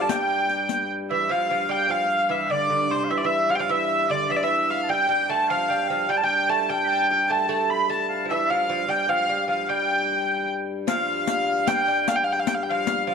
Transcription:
0.00 1.29 G2 medium
0.00 0.09 A3 medium
0.00 0.09 A5 medium
0.09 0.86 G3 medium
0.09 0.89 G5 medium
0.09 0.86 G5 medium
0.09 riq medium
0.49 riq soft
0.69 riq medium
1.11 1.31 E3 medium
1.11 1.31 E5 medium
1.11 1.32 E5 medium
1.29 6.08 G2 medium
1.29 1.49 F3 medium
1.29 1.49 F5 medium
1.29 1.71 F5 medium
1.49 1.69 F3 medium
1.49 1.87 F5 medium
1.69 1.89 G3 medium
1.69 1.91 G5 medium
1.89 2.31 F3 medium
1.89 2.52 F5 medium
1.89 2.31 F5 medium
2.29 2.49 E3 medium
2.29 2.51 E5 medium
2.50 2.69 D3 medium
2.50 3.06 D5 medium
2.50 2.91 D5 medium
2.70 2.90 D3 medium
2.90 3.09 C3 medium
2.90 3.10 C5 medium
3.05 3.11 F5 medium
3.09 3.23 E3 medium
3.09 3.23 E5 medium
3.09 3.18 E5 medium
3.18 3.26 D5 medium
3.24 3.51 E3 medium
3.24 3.52 E5 medium
3.24 3.51 E5 medium
3.49 3.58 F3 medium
3.49 3.59 F5 medium
3.49 3.55 F5 medium
3.55 3.60 G5 medium
3.59 3.70 F3 medium
3.59 3.64 F5 medium
3.59 3.71 F5 medium
3.69 4.09 E3 medium
3.69 4.11 E5 medium
4.09 4.29 D3 medium
4.09 4.29 D5 medium
4.09 4.31 D5 medium
4.29 4.42 E3 medium
4.29 4.42 E5 medium
4.29 4.37 E5 medium
4.36 4.44 D5 medium
4.43 4.91 E3 medium
4.43 4.80 E5 medium
4.43 4.70 E5 medium
4.70 4.90 F5 medium
4.83 4.91 A5 medium
4.89 5.08 G3 medium
4.89 5.29 G5 medium
4.89 5.30 G5 medium
5.09 5.30 G3 medium
5.29 5.50 A3 medium
5.29 5.50 A5 medium
5.48 5.70 F3 medium
5.48 5.70 F5 medium
5.48 5.90 F5 medium
5.69 5.90 G3 medium
5.69 5.90 G5 medium
5.88 6.09 F3 medium
5.88 6.11 F5 medium
5.88 6.10 F5 medium
6.09 10.87 G2 medium
6.09 6.22 G3 medium
6.09 6.22 G5 medium
6.09 6.17 G5 medium
6.17 6.23 A5 medium
6.23 6.50 G3 medium
6.23 6.51 G5 medium
6.23 6.50 G5 loud
6.49 6.70 A3 medium
6.49 6.70 A5 loud
6.49 6.71 A5 medium
6.70 7.10 G3 medium
6.70 6.84 G5 medium
6.70 7.10 G5 medium
6.84 7.09 A5 medium
6.84 6.90 B5 medium
7.09 7.31 G3 medium
7.09 7.30 G5 medium
7.09 7.31 G5 medium
7.29 7.48 A3 medium
7.29 7.69 A5 medium
7.29 7.70 A5 loud
7.49 7.88 A3 medium
7.70 7.90 B5 loud
7.89 8.25 A3 medium
7.89 8.08 A5 medium
7.89 8.30 A5 loud
8.09 8.28 F5 medium
8.25 8.30 F3 medium
8.25 8.50 E5 medium
8.30 8.50 E3 medium
8.30 8.50 E5 medium
8.49 8.68 F3 medium
8.49 8.91 F5 medium
8.49 8.90 F5 medium
8.69 8.88 F3 medium
8.88 9.08 G3 medium
8.88 9.09 G5 medium
8.88 9.09 G5 loud
9.09 9.27 F3 medium
9.09 9.49 F5 loud
9.09 9.46 F5 medium
9.29 9.47 G3 medium
9.48 9.69 F3 medium
9.48 9.69 F5 medium
9.48 9.70 F5 medium
9.69 10.45 G3 medium
9.69 10.48 G5 medium
10.87 13.14 G2 medium
10.87 11.66 F3 medium
10.87 11.44 F5 medium
10.87 11.68 F5 loud
10.87 riq medium
11.27 riq medium
11.47 11.66 F5 medium
11.67 11.87 G3 medium
11.67 11.77 G5 medium
11.67 12.08 G5 loud
11.67 riq medium
11.76 11.83 F5 medium
11.82 12.08 G5 medium
11.88 12.06 G3 medium
12.08 12.16 F5 medium
12.08 riq medium
12.16 12.24 G5 medium
12.24 12.32 F5 medium
12.32 12.39 G5 medium
12.39 12.47 F5 medium
12.47 12.55 G5 medium
12.47 riq medium
12.55 12.63 F5 medium
12.63 12.71 G5 medium
12.70 13.06 F3 medium
12.70 13.14 F5 medium
12.70 13.07 F5 loud
12.87 riq medium
13.07 13.14 F3 medium
13.07 13.14 F5 medium

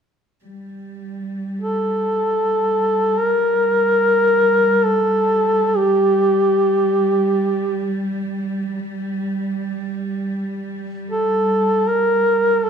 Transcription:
0.42 12.70 G3 soft
1.61 3.20 A4 medium
3.18 4.87 A#4 medium
4.86 5.79 A4 medium
5.77 8.05 G4 medium
11.10 11.89 A4 medium
11.88 12.65 A#4 medium
12.64 12.70 A4 medium

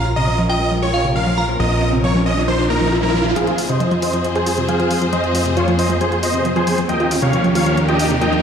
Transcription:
0.00 1.58 A#1 medium
0.00 3.32 C#4 medium
0.00 3.32 F4 medium
0.00 3.33 A#4 medium
0.00 0.41 A#5 medium
0.00 riser medium
0.05 0.15 F4 medium
0.16 0.26 C3 medium
0.16 0.39 D#5 medium
0.27 0.34 F3 medium
0.38 0.45 F3 medium
0.49 0.56 F4 medium
0.49 0.72 D#5 medium
0.49 0.91 G5 medium
0.60 0.64 F3 medium
0.71 0.81 F3 medium
0.82 0.86 F4 medium
0.82 1.05 C#5 medium
0.93 1.03 F4 medium
0.93 1.36 F5 medium
1.05 1.14 C3 medium
1.16 1.22 F3 medium
1.16 1.45 F5 medium
1.27 1.33 F3 loud
1.38 1.44 F3 medium
1.38 1.80 A#5 medium
1.49 1.52 F3 medium
1.60 3.34 A#1 medium
1.60 1.69 F3 medium
1.60 1.89 D#5 medium
1.71 1.74 F4 medium
1.82 1.91 F4 medium
1.93 2.02 C3 medium
2.04 2.10 F3 medium
2.04 2.19 C#5 medium
2.15 2.21 F3 loud
2.26 2.32 F4 medium
2.26 2.41 D#5 medium
2.37 2.41 F3 medium
2.48 2.57 F3 medium
2.48 2.63 C5 medium
2.59 2.63 F4 medium
2.70 2.79 A#3 medium
2.70 2.92 A#4 medium
2.81 2.87 F3 loud
2.92 2.98 F4 medium
3.03 3.07 F3 medium
3.03 3.25 A#4 loud
3.14 3.20 F3 medium
3.25 3.29 F3 medium
3.36 6.86 F2 medium
3.36 3.45 F3 medium
3.36 6.86 F3 medium
3.36 6.86 C4 medium
3.36 6.86 G#4 medium
3.36 3.58 G#4 medium
3.36 6.86 C5 medium
3.36 3.58 F5 medium
3.36 closed hi-hat soft
3.36 riser medium
3.47 3.51 F4 medium
3.47 closed hi-hat soft
3.58 3.68 F4 medium
3.58 open hi-hat loud
3.69 3.79 C3 medium
3.69 3.92 C5 medium
3.69 3.92 D#5 medium
3.69 closed hi-hat soft
3.80 3.87 F3 medium
3.80 closed hi-hat soft
3.91 3.98 F3 medium
3.91 closed hi-hat soft
4.02 4.09 F4 medium
4.02 4.25 C5 medium
4.02 4.25 D#5 medium
4.02 open hi-hat loud
4.13 4.17 F3 medium
4.13 closed hi-hat medium
4.24 4.34 F3 medium
4.24 closed hi-hat medium
4.35 4.39 F4 medium
4.35 4.58 G#4 medium
4.35 4.58 C5 loud
4.35 closed hi-hat soft
4.46 4.56 F4 medium
4.46 open hi-hat loud
4.58 4.67 C3 medium
4.58 closed hi-hat soft
4.69 4.75 F3 medium
4.69 4.98 G#4 medium
4.69 4.98 F5 medium
4.69 closed hi-hat medium
4.80 4.86 F3 medium
4.80 closed hi-hat soft
4.91 4.97 F3 medium
4.91 open hi-hat loud
5.02 5.05 F3 medium
5.02 closed hi-hat medium
5.13 5.22 F3 medium
5.13 5.42 C5 medium
5.13 5.42 D#5 medium
5.13 closed hi-hat medium
5.24 5.27 F4 medium
5.24 closed hi-hat soft
5.35 5.44 F4 medium
5.35 open hi-hat loud
5.46 5.55 C3 medium
5.46 closed hi-hat soft
5.57 5.63 F3 medium
5.57 5.72 F4 medium
5.57 5.72 C#5 medium
5.57 closed hi-hat soft
5.68 5.74 F3 loud
5.68 closed hi-hat soft
5.79 5.85 F4 medium
5.79 5.94 C5 medium
5.79 5.94 D#5 medium
5.79 open hi-hat loud
5.90 5.94 F3 medium
5.90 closed hi-hat soft
6.01 6.10 F3 medium
6.01 6.16 G#4 medium
6.01 6.16 C5 medium
6.01 closed hi-hat soft
6.12 6.16 F4 medium
6.12 closed hi-hat soft
6.23 6.32 F4 medium
6.23 6.45 C5 medium
6.23 6.45 D#5 medium
6.23 open hi-hat loud
6.34 6.43 C3 medium
6.34 closed hi-hat medium
6.45 6.51 F3 medium
6.45 closed hi-hat soft
6.56 6.62 F3 loud
6.56 6.78 G#4 medium
6.56 6.78 C5 medium
6.56 closed hi-hat soft
6.67 6.73 F3 medium
6.67 open hi-hat loud
6.78 6.82 F3 medium
6.78 closed hi-hat medium
6.89 8.42 D#2 medium
6.89 8.42 D#3 medium
6.89 6.98 F3 medium
6.89 8.42 A#3 medium
6.89 8.42 G4 medium
6.89 8.42 A#4 medium
6.89 7.11 D#5 medium
6.89 7.11 G5 loud
6.89 closed hi-hat soft
7.00 7.04 F4 medium
7.00 closed hi-hat soft
7.11 7.20 F4 medium
7.11 open hi-hat loud
7.22 7.31 C3 medium
7.22 7.45 C#5 medium
7.22 7.45 F5 loud
7.22 closed hi-hat soft
7.33 7.39 F3 medium
7.33 closed hi-hat soft
7.44 7.50 F3 medium
7.44 closed hi-hat soft
7.55 7.62 F4 medium
7.55 7.78 C#5 medium
7.55 7.78 F5 medium
7.55 open hi-hat loud
7.66 7.70 F3 medium
7.66 closed hi-hat soft
7.77 7.87 F3 medium
7.77 closed hi-hat soft
7.88 7.92 F4 medium
7.88 8.11 G4 medium
7.88 8.11 D#5 loud
7.88 closed hi-hat soft
7.99 8.09 F4 medium
7.99 open hi-hat loud
8.10 8.20 C3 medium
8.10 closed hi-hat soft
8.21 8.28 F3 medium
8.21 8.42 D#5 medium
8.21 8.42 G5 medium
8.21 closed hi-hat soft
8.33 8.39 F3 loud
8.33 closed hi-hat soft

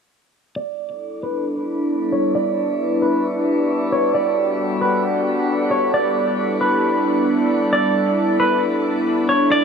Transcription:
0.56 9.64 G3 medium
0.56 9.64 B3 medium
0.56 4.11 D4 medium
0.56 4.11 E4 medium
0.56 2.33 A4 medium
0.56 1.19 D5 medium
1.23 1.44 B4 medium
2.12 2.34 C#5 medium
2.35 4.12 B4 medium
2.35 2.98 D5 loud
3.02 3.23 B4 medium
3.92 4.13 C#5 medium
4.14 9.64 D4 medium
4.14 5.91 F#4 medium
4.14 9.64 A4 medium
4.14 4.77 D5 medium
4.81 5.03 B4 medium
5.71 5.92 C#5 medium
5.93 9.48 E4 medium
5.93 6.57 D5 loud
6.61 7.24 B4 medium
7.73 8.36 D5 medium
8.40 8.61 B4 medium
9.29 9.50 C#5 medium
9.51 9.64 F#4 medium
9.51 9.64 D5 loud

